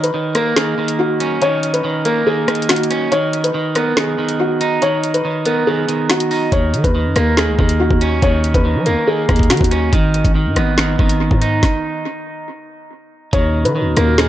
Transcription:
Already playing: clean electric guitar D#3
0.03 grand piano B4, closed hi-hat
0.14 clean electric guitar D#3
0.35 clean electric guitar A#3, grand piano A#4, cross-stick, closed hi-hat
0.56 clean electric guitar D#3, grand piano G#4, finger snap, snare
0.78 clean electric guitar D#3
0.88 closed hi-hat
0.99 grand piano F#4
1.20 clean electric guitar C#4, closed hi-hat
1.41 clean electric guitar D#3, grand piano C#5, closed hi-hat
1.63 closed hi-hat
1.73 grand piano B4, closed hi-hat
1.84 clean electric guitar D#3
2.05 clean electric guitar A#3, grand piano A#4, closed hi-hat
2.27 clean electric guitar D#3, grand piano G#4
2.48 clean electric guitar D#3, cross-stick, closed hi-hat
2.55 closed hi-hat
2.62 closed hi-hat
2.69 grand piano F#4, finger snap, snare, closed hi-hat
2.76 closed hi-hat
2.83 closed hi-hat
2.90 clean electric guitar C#4, closed hi-hat
3.12 clean electric guitar D#3, grand piano C#5, closed hi-hat
3.33 closed hi-hat
3.44 grand piano B4, closed hi-hat
3.54 clean electric guitar D#3
3.75 clean electric guitar B3, grand piano A#4, cross-stick, closed hi-hat
3.97 clean electric guitar D#3, grand piano G#4, finger snap, snare
4.18 clean electric guitar D#3
4.29 closed hi-hat
4.40 grand piano F#4
4.61 clean electric guitar D#4, closed hi-hat
4.82 clean electric guitar D#3, grand piano C#5, closed hi-hat
5.04 closed hi-hat
5.14 grand piano B4, closed hi-hat
5.25 clean electric guitar D#3
5.45 clean electric guitar B3, grand piano A#4, closed hi-hat
5.67 clean electric guitar D#3, grand piano G#4
5.88 clean electric guitar D#3, closed hi-hat
6.10 grand piano F#4, finger snap, snare
6.20 closed hi-hat
6.31 clean electric guitar D#4, open hi-hat
6.52 808-style bass D#2, clean electric guitar D#3, grand piano C#5, kick, closed hi-hat
6.73 808-style bass D#3, closed hi-hat
6.84 808-style bass D#2, grand piano B4, kick, closed hi-hat
6.95 clean electric guitar D#3
7.05 808-style bass F#2
7.16 808-style bass D#2, clean electric guitar A#3, grand piano A#4, cross-stick, closed hi-hat
7.37 clean electric guitar D#3, grand piano G#4, finger snap, snare
7.48 808-style bass C#2
7.59 808-style bass D#2, clean electric guitar D#3, kick
7.69 closed hi-hat
7.80 grand piano F#4
7.91 808-style bass D#2, kick
8.01 clean electric guitar C#4, closed hi-hat
8.22 808-style bass D#2, clean electric guitar D#3, grand piano C#5, kick, closed hi-hat
8.44 closed hi-hat
8.54 808-style bass D#2, grand piano B4, kick, closed hi-hat
8.65 clean electric guitar D#3
8.76 808-style bass F#3
8.86 808-style bass D#2, clean electric guitar A#3, grand piano A#4, closed hi-hat
9.07 clean electric guitar D#3, grand piano G#4
9.29 808-style bass D#2, clean electric guitar D#3, kick, cross-stick, closed hi-hat
9.36 kick, closed hi-hat
9.43 closed hi-hat
9.50 808-style bass D#3, grand piano F#4, finger snap, snare, closed hi-hat
9.57 808-style bass D#2, kick, closed hi-hat
9.64 closed hi-hat
9.71 clean electric guitar C#4, closed hi-hat
9.93 808-style bass G#1, clean electric guitar D#3, kick, closed hi-hat
10.14 closed hi-hat
10.25 808-style bass G#1, kick, closed hi-hat
10.35 clean electric guitar D#3
10.46 808-style bass G#2
10.56 808-style bass G#1, clean electric guitar B3, cross-stick, closed hi-hat
10.78 clean electric guitar D#3, finger snap, snare
10.99 808-style bass G#1, clean electric guitar D#3, kick
11.09 closed hi-hat
11.31 808-style bass G#2, kick
11.42 clean electric guitar D#4, closed hi-hat
11.63 kick, snare
13.33 808-style bass D#2, analog synth pad A#2 D#3 C#4 F#4, clean electric guitar D#3, grand piano C#5, kick, closed hi-hat
13.65 808-style bass D#3, grand piano B4, closed hi-hat
13.76 clean electric guitar D#3
13.81 808-style bass D#2
13.97 808-style bass D#2, clean electric guitar A#3, grand piano A#4, cross-stick, closed hi-hat
14.18 clean electric guitar D#3, grand piano G#4, finger snap, snare

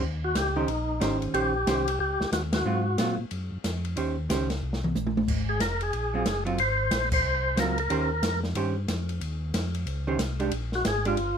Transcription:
0.02 tonewheel organ D#2
0.24 tonewheel organ F#4
0.35 tonewheel organ C#2 G4, snare, hi-hat pedal, ride
0.56 hollow-body jazz guitar D#3 C#4 G4 C5, tonewheel organ D#4
0.68 tonewheel organ A#1, ride
1.00 tonewheel organ G#1, hollow-body jazz guitar D#3 C#4 G4 C5, snare, hi-hat pedal, ride
1.21 tonewheel organ G#1, ride
1.34 tonewheel organ A#1 G4, hollow-body jazz guitar D#3 C#4 G4 C5, ride
1.66 tonewheel organ C2, hollow-body jazz guitar D#3 C#4 G4 C5, snare, hi-hat pedal, ride
1.88 ride
1.99 tonewheel organ C#2 G4
2.20 tonewheel organ C#2, snare
2.32 tonewheel organ D#2 F#4, snare, hi-hat pedal, ride
2.53 tonewheel organ F#4, snare, ride
2.65 tonewheel organ G#2, hollow-body jazz guitar F#3 C4 F4
2.98 tonewheel organ A#2, hollow-body jazz guitar F#3 C4 F4, snare, hi-hat pedal, ride
3.19 tonewheel organ A#2
3.31 tonewheel organ F#2, ride
3.52 tonewheel organ F#2
3.64 tonewheel organ F2, snare, hi-hat pedal, ride
3.85 ride
3.96 tonewheel organ D#2, hollow-body jazz guitar D#3 C#4 G4 C5, ride
4.29 tonewheel organ C#2, hollow-body jazz guitar D#3 C#4 G4 C5, snare, hi-hat pedal, ride
4.50 snare, ride
4.62 tonewheel organ C2
4.73 snare
4.84 mid tom
4.95 tonewheel organ A#1, hi-hat pedal, high tom
5.07 high tom
5.17 high tom
5.28 tonewheel organ G#1, kick, crash
5.49 tonewheel organ G#4
5.60 tonewheel organ F1 A#4, snare, hi-hat pedal, ride
5.81 tonewheel organ G#4, ride
5.93 tonewheel organ A#1, ride
6.14 hollow-body jazz guitar F#3 C4 F4
6.26 tonewheel organ F#1, snare, hi-hat pedal, ride
6.45 hollow-body jazz guitar F#3 C4 F4, ride
6.58 tonewheel organ G#1 C5, ride
6.91 tonewheel organ A#1, snare, hi-hat pedal, ride
7.12 tonewheel organ C5, kick, crash
7.24 tonewheel organ C2
7.56 tonewheel organ C#2 A#4, hollow-body jazz guitar F#3 C4 F4, snare, hi-hat pedal, ride
7.78 tonewheel organ A#4, ride
7.90 tonewheel organ D#2, hollow-body jazz guitar D#3 C#4 G4 C5, ride
8.22 tonewheel organ F2, snare, hi-hat pedal, ride
8.43 snare
8.55 tonewheel organ G2, hollow-body jazz guitar D#3 C#4 G4 C5, ride
8.88 tonewheel organ F2, snare, hi-hat pedal, ride
9.09 ride
9.21 tonewheel organ D#2, ride
9.54 tonewheel organ F2, snare, hi-hat pedal, ride
9.74 ride
9.86 tonewheel organ C#2, ride
10.07 hollow-body jazz guitar D#3 C#4 G4 C5
10.19 tonewheel organ C2, snare, hi-hat pedal, ride
10.40 hollow-body jazz guitar G#3 D4 G4, ride
10.51 tonewheel organ A#1, ride
10.72 tonewheel organ F#4, snare
10.85 tonewheel organ G#1 G#4, snare, hi-hat pedal, ride
11.05 hollow-body jazz guitar G#3 D4 G4, tonewheel organ F4, ride
11.17 tonewheel organ G1, ride

